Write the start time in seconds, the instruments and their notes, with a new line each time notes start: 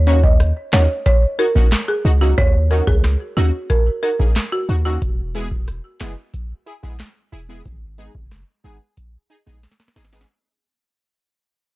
Already playing: 808-style bass D#2
0.07 synth stab A#3 C#4 D#4 F#4, marimba C#5, closed hi-hat
0.24 marimba D#5, kick
0.40 cross-stick, closed hi-hat
0.73 808-style bass D#2, synth stab A#3 C#4 D#4 F#4, marimba C#5, snare, clap, closed hi-hat
1.06 marimba C#5, kick, closed hi-hat
1.39 synth stab D#4 F#4, marimba A#4, closed hi-hat
1.55 synth stab A#3 C#4 D#4 F#4, kick
1.72 snare, clap, closed hi-hat
1.88 marimba G#4
2.05 808-style bass C#2, synth stab D#4 F#4, closed hi-hat
2.21 synth stab A#3 C#4 D#4 F#4, marimba F#4
2.38 808-style bass D#2, marimba C#5, kick, closed hi-hat
2.71 synth stab A#3 C#4 D#4 F#4, marimba A#4, closed hi-hat
2.87 808-style bass C#2, marimba G#4, kick
3.04 cross-stick, snare, closed hi-hat
3.37 808-style bass D#2, synth stab A#3 C#4 D#4 F#4, marimba F#4, closed hi-hat
3.70 marimba A#4, kick, closed hi-hat
4.02 synth stab D#4 F#4, marimba A#4, closed hi-hat
4.19 synth stab A#3 C#4 D#4 G#4, kick
4.36 snare, clap, closed hi-hat
4.52 marimba F#4
4.68 808-style bass D#2, synth stab D#4 F#4, closed hi-hat
4.85 synth stab A#3 C#4 D#4 F#4, marimba F#4
5.02 808-style bass E1, kick, closed hi-hat
5.34 synth stab G#3 B3 E4 G#4, closed hi-hat
5.51 kick
5.68 cross-stick, closed hi-hat
6.00 808-style bass F#1, synth stab G#3 B3 E4 G#4, snare, clap, closed hi-hat
6.34 kick, closed hi-hat
6.66 synth stab E4 G#4, closed hi-hat
6.83 synth stab G#3 B3 E4 G#4, kick
7.00 snare, clap, closed hi-hat
7.32 808-style bass E1, synth stab E4 G#4, closed hi-hat
7.49 synth stab G#3 B3 E4 G#4
7.65 808-style bass G#1, kick, closed hi-hat
7.98 synth stab G#3 B3 D#4 G#4, closed hi-hat
8.15 808-style bass F#1, kick
8.31 cross-stick, snare, closed hi-hat
8.64 808-style bass G#1, synth stab G#3 B3 D#4 G#4, closed hi-hat
8.97 kick, closed hi-hat
9.30 synth stab D#4 G#4, closed hi-hat
9.46 synth stab G#3 B3 D#4 G#4, kick
9.63 snare, closed hi-hat
9.71 snare
9.80 snare
9.88 snare
9.96 808-style bass G#1, synth stab D#4 G#4, snare, closed hi-hat
10.04 snare
10.12 synth stab G#3 B3 D#4 G#4, snare
10.21 snare